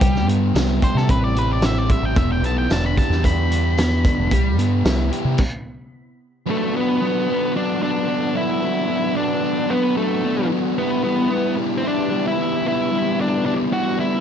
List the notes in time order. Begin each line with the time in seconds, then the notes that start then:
Already playing: B3 G4
0.01 C2 C3 G3 E4, kick, closed hi-hat
0.16 snare
0.27 G2 B3, closed hi-hat
0.54 C2 E4, snare, closed hi-hat, tambourine
0.82 G4 C5, kick, closed hi-hat
0.95 C3 A4, snare
1.08 A1 C3 A3 C4 B4, kick, closed hi-hat
1.24 D5
1.36 G4 B4, closed hi-hat
1.53 D5
1.62 C4 E5, snare, closed hi-hat, tambourine
1.78 D5
1.89 E4 E5, kick, closed hi-hat
2.02 A1 G5
2.16 E1 D3 B3 E4 E5, kick, closed hi-hat
2.32 G5
2.42 B1 B3 A5, closed hi-hat
2.58 G5
2.70 E1 D4 A5, snare, closed hi-hat, tambourine
2.86 B5
2.97 G4 A5, kick, closed hi-hat
3.10 E2, snare
3.24 D4 B5, kick, closed hi-hat
3.51 G4, closed hi-hat
3.77 B3, snare, closed hi-hat, tambourine
4.04 D4, kick, closed hi-hat
4.18 E1
4.31 C2 C3 G3 B3, kick, closed hi-hat
4.58 G2 B3, closed hi-hat
4.85 C2 E4, snare, closed hi-hat, tambourine
5.12 G4, closed hi-hat
5.25 C3
5.38 kick, crash
6.46 F#3 A3 B3 D4 A4 B4 F#5
6.74 F#3 B3 D4
7.02 F#3 B3 D4
7.29 F#3 B3 D4
7.55 F#3 B3 D4
7.82 F#3 B3 D4
8.07 F#3 B3 D4
8.34 F#3 B3 D4 E4
8.62 F#3 B3 D4
8.89 F#3 B3 D4
9.15 F#3 B3 D4
9.42 F#3 B3 D4
9.69 F#3 B3 D4
9.96 F#3 A3 B3 D4
10.24 F#3 B3 D4
10.50 F#3 B3 D4
10.77 G3 B3 D4 E4 G4 E5
11.04 G3 B3 E4
11.31 G3 B3 E4
11.57 G3 B3 E4
11.78 C4
11.83 G3 B3 E4
11.88 D4
12.11 G3 B3 E4
12.28 E4
12.36 G3 B3 E4
12.65 G3 B3 E4
12.91 G3 B3 E4 D5
13.19 G3 B3 D4 E4
13.45 G3 B3 D4 E4
13.73 G3 B3 E4 F#4
14.00 G3 B3 E4